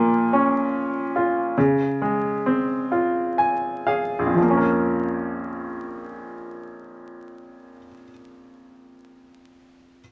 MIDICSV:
0, 0, Header, 1, 2, 480
1, 0, Start_track
1, 0, Key_signature, -5, "minor"
1, 0, Tempo, 825309
1, 909, Time_signature, 6, 3, 24, 8
1, 909, Tempo, 878477
1, 1389, Tempo, 931677
1, 1869, Tempo, 1000000
1, 2349, Tempo, 1039861
1, 5001, End_track
2, 0, Start_track
2, 0, Title_t, "Upright piano"
2, 0, Program_c, 0, 0
2, 0, Control_c, 0, 64, 127
2, 0, Note_on_c, 0, 46, 60
2, 0, Note_on_c, 0, 53, 43
2, 0, Note_on_c, 0, 58, 45
2, 192, Note_on_c, 0, 61, 49
2, 643, Note_off_c, 0, 53, 0
2, 673, Note_on_c, 0, 65, 46
2, 889, Note_off_c, 0, 46, 0
2, 889, Note_off_c, 0, 58, 0
2, 891, Note_off_c, 0, 61, 0
2, 907, Note_off_c, 0, 65, 0
2, 915, Control_c, 0, 64, 0
2, 916, Note_on_c, 0, 49, 57
2, 1013, Control_c, 0, 64, 127
2, 1156, Note_on_c, 0, 56, 43
2, 1400, Note_on_c, 0, 60, 43
2, 1634, Note_on_c, 0, 65, 41
2, 1873, Note_on_c, 0, 80, 47
2, 2090, Note_off_c, 0, 56, 0
2, 2090, Note_off_c, 0, 80, 0
2, 2105, Note_on_c, 0, 68, 41
2, 2105, Note_on_c, 0, 77, 49
2, 2260, Note_on_c, 0, 34, 42
2, 2297, Note_on_c, 0, 41, 38
2, 2332, Note_off_c, 0, 77, 0
2, 2333, Note_off_c, 0, 49, 0
2, 2334, Note_off_c, 0, 60, 0
2, 2334, Note_off_c, 0, 65, 0
2, 2334, Note_on_c, 0, 53, 36
2, 2342, Note_off_c, 0, 68, 0
2, 2355, Control_c, 0, 64, 0
2, 2372, Note_on_c, 0, 58, 37
2, 2407, Note_on_c, 0, 61, 38
2, 2441, Note_on_c, 0, 70, 43
2, 2446, Control_c, 0, 64, 127
2, 3886, Note_off_c, 0, 34, 0
2, 3921, Note_off_c, 0, 41, 0
2, 3958, Note_off_c, 0, 53, 0
2, 3994, Note_off_c, 0, 58, 0
2, 4029, Note_off_c, 0, 61, 0
2, 4063, Note_off_c, 0, 70, 0
2, 4947, Control_c, 0, 64, 0
2, 5001, End_track
0, 0, End_of_file